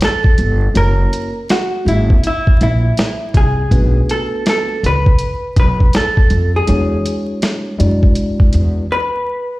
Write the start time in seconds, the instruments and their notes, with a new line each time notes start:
0.01 hollow-body jazz guitar A4, snare, closed hi-hat
0.24 kick
0.38 upright bass G1, closed hi-hat
0.74 upright bass F#1, tine electric piano A#3 C#4 E4 F#4 C#5, hollow-body jazz guitar A#4, closed hi-hat
1.13 closed hi-hat
1.49 hollow-body jazz guitar F#4, snare, closed hi-hat
1.85 upright bass G#1, tine electric piano A#3 C#4 E4 F#4 G#4, hollow-body jazz guitar E4, closed hi-hat
2.10 kick
2.24 hollow-body jazz guitar E4, closed hi-hat
2.47 kick
2.61 upright bass A#1, hollow-body jazz guitar E4, closed hi-hat
2.97 snare, closed hi-hat
3.34 upright bass C2, hollow-body jazz guitar G#4, kick, closed hi-hat
3.70 upright bass B1, tine electric piano A3 B3 D4 F#4 B4, kick, closed hi-hat
4.09 hollow-body jazz guitar A4, closed hi-hat
4.46 hollow-body jazz guitar A4, snare, closed hi-hat
4.83 upright bass C#2, hollow-body jazz guitar B4, closed hi-hat
5.06 kick
5.19 closed hi-hat
5.57 upright bass B1, hollow-body jazz guitar B4, kick, closed hi-hat
5.80 kick
5.93 hollow-body jazz guitar A4, snare, closed hi-hat
6.17 kick
6.30 upright bass F2, closed hi-hat
6.56 hollow-body jazz guitar G#4
6.67 upright bass E2, tine electric piano G#3 D4 E4 F#4 C#5, closed hi-hat
7.06 closed hi-hat
7.42 snare, closed hi-hat
7.78 upright bass F#2, tine electric piano G#3 D4 E4 F#4 D5, closed hi-hat
8.03 kick
8.15 closed hi-hat
8.40 kick
8.53 upright bass E2, closed hi-hat
8.92 hollow-body jazz guitar B4